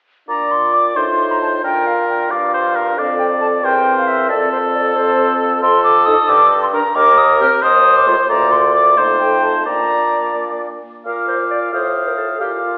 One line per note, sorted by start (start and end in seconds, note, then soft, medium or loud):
0.27 0.97 A#2 medium
0.27 0.97 D4 medium
0.27 0.92 F4 medium
0.27 0.98 D5 medium
0.27 0.53 A#5 medium
0.51 0.75 C6 medium
0.74 0.97 D6 medium
0.95 1.62 A2 medium
0.95 1.64 D#4 medium
0.95 1.61 F4 medium
0.95 1.63 C5 medium
0.95 1.33 C6 medium
1.31 1.41 A#5 medium
1.42 1.48 A5 medium
1.62 2.31 A#2 medium
1.62 2.30 D4 medium
1.62 2.29 F4 medium
1.62 2.32 A#4 medium
1.62 1.88 G5 medium
1.87 2.08 F5 medium
2.09 2.32 G5 medium
2.30 2.96 G2 medium
2.30 3.00 D4 medium
2.30 2.98 F4 medium
2.30 2.53 D5 medium
2.30 2.96 F5 medium
2.54 2.77 C5 medium
2.76 3.00 A#4 medium
2.96 3.62 F2 medium
2.96 3.63 C4 medium
2.96 3.64 A4 medium
2.96 3.66 D5 medium
2.96 3.18 F5 medium
3.19 3.25 G5 medium
3.41 3.47 A5 medium
3.63 4.31 E2 medium
3.63 4.29 C4 medium
3.63 4.31 A#4 medium
3.63 4.29 C5 medium
3.63 3.96 G5 medium
3.98 4.09 F5 medium
4.07 4.31 E5 medium
4.29 5.62 F2 medium
4.29 4.95 C4 medium
4.29 5.60 A4 medium
4.29 4.96 A4 medium
4.29 4.51 D5 loud
4.52 4.58 C5 medium
4.74 4.97 D5 medium
4.96 5.61 C4 medium
4.96 5.61 A4 medium
4.96 5.32 C5 loud
5.62 6.18 F2 medium
5.62 6.65 A4 medium
5.62 5.84 C6 loud
5.84 6.07 D6 medium
6.06 6.15 D#4 medium
6.06 6.15 A4 medium
6.06 6.30 D#6 loud
6.28 6.84 G2 medium
6.28 6.62 D6 loud
6.62 6.67 C6 medium
6.73 6.81 D4 medium
6.73 6.81 A#4 medium
6.73 6.97 A#5 loud
6.95 7.51 D#2 medium
6.95 7.64 A#4 medium
6.95 7.19 D6 loud
7.18 7.40 D#6 medium
7.40 7.48 C4 medium
7.40 7.48 G4 medium
7.40 7.62 F6 loud
7.62 8.18 D#2 medium
7.62 8.29 C5 medium
7.62 7.98 D#6 loud
7.97 8.09 D6 medium
8.06 8.14 A3 medium
8.06 8.15 F4 medium
8.06 8.28 C6 medium
8.29 8.98 D2 medium
8.29 8.98 A#3 medium
8.29 9.00 F4 medium
8.29 8.99 D5 medium
8.29 8.53 A#5 loud
8.51 8.74 C6 medium
8.75 8.97 D6 medium
8.96 9.67 F2 medium
8.96 9.65 A3 medium
8.96 9.66 D#4 medium
8.96 9.65 C5 medium
8.96 9.03 C6 medium
9.20 9.45 G5 medium
9.44 9.68 A5 medium
9.66 10.82 A#2 medium
9.66 10.80 A#3 medium
9.66 10.80 D4 medium
9.66 10.69 D5 medium
9.66 10.36 A#5 medium
11.05 11.69 A#2 soft
11.05 11.69 F4 soft
11.05 11.26 A#4 medium
11.05 11.69 F5 soft
11.05 11.69 D6 soft
11.28 11.38 C5 medium
11.50 11.60 D5 medium
11.73 12.41 A2 soft
11.73 12.39 F4 soft
11.73 12.09 C5 medium
11.73 12.39 F5 soft
11.73 12.43 D#6 soft
12.07 12.17 A#4 medium
12.17 12.28 A4 medium
12.40 12.78 A#2 soft
12.40 12.78 F4 soft
12.40 12.50 G4 medium
12.40 12.78 F5 soft
12.40 12.78 D6 soft
12.63 12.78 F4 medium